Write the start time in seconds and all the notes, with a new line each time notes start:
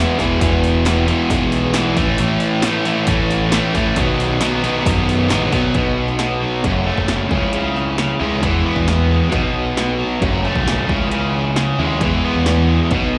Already playing: E2 B2 E3 G#3 B3 E4
0.18 E1 E2 B2 E3 G#3 B3 E4, kick, open hi-hat
0.40 E1 E2 B2 E3 G#3 B3 E4, kick, open hi-hat
0.64 open hi-hat
0.85 E2 B2 E3 G#3 B3 E4, snare, clap, open hi-hat
1.07 E2 B2 E3 G#3 B3 E4, open hi-hat
1.30 B1 E2 B2 E3 G#3 B3 E4, kick, open hi-hat
1.52 open hi-hat
1.74 E2 B2 E3 G#3 B3 E4, snare, clap, open hi-hat
1.96 A1 A2 E3 A3 C#4 E4, kick, open hi-hat
2.18 A1 A2 E3 A3 C#4 E4, open hi-hat
2.40 open hi-hat
2.62 A2 E3 A3 C#4 E4, snare, clap, open hi-hat
2.85 A2 E3 A3 C#4 E4, open hi-hat
3.07 A1 A2 E3 A3 C#4 E4, kick, open hi-hat
3.31 snare, open hi-hat
3.50 A2 E3 A3 C#4 E4, snare, clap, open hi-hat
3.73 A1 A2 E3 A3 C#4 E4, kick, open hi-hat
3.95 B1 B2 D#3 F#3 B3 D#4, kick, open hi-hat
4.20 open hi-hat
4.39 B2 D#3 F#3 B3 D#4, snare, clap, open hi-hat
4.62 B2 D#3 F#3 B3 D#4, open hi-hat
4.83 F#2 B2 D#3 F#3 B3 D#4, kick, open hi-hat
5.09 open hi-hat
5.29 A1 B2 D#3 F#3 B3 D#4, snare, clap, open hi-hat
5.52 B1 B2 D#3 F#3 B3 D#4, kick, open hi-hat
5.74 B1 B2 F#3 B3 D#4, kick, closed hi-hat
6.08 snare
6.19 B2, snare, closed hi-hat
6.42 F#3
6.63 F#1 F#2 C#3 F#3 A3 C#4, kick, closed hi-hat
6.86 A3
6.97 F#1, kick
7.08 C#3, snare, closed hi-hat
7.29 C#2 C#3 G#3 C#4 E4, kick
7.53 C#3, closed hi-hat
7.76 snare
7.98 C#3, snare, closed hi-hat
8.19 C#2 C#3 G#3 C#4 E4
8.41 E2 E3 G#3 B3 E4, kick, closed hi-hat
8.66 B3
8.76 E2, kick
8.88 E3, snare, closed hi-hat
9.10 G#3
9.30 B1 B2 F#3 B3 D#4, kick, closed hi-hat
9.77 B2, snare, closed hi-hat
9.99 F#3
10.20 F#1 F#2 C#3 F#3 A3, kick, closed hi-hat
10.24 C#4
10.45 A3, snare
10.56 B1, kick
10.67 C#3, snare, closed hi-hat
10.88 C#2 C#3 G#3 C#4 E4, kick
11.11 C#3, closed hi-hat
11.56 C#3, snare, closed hi-hat
11.79 D#2 C#3 G#3 C#4 E4
12.00 E2 E3 G#3 B3 E4, kick, closed hi-hat
12.25 B3
12.36 E2
12.46 E3, snare, closed hi-hat
12.69 G#3
12.91 B1 B2 F#3 B3 D#4, kick, closed hi-hat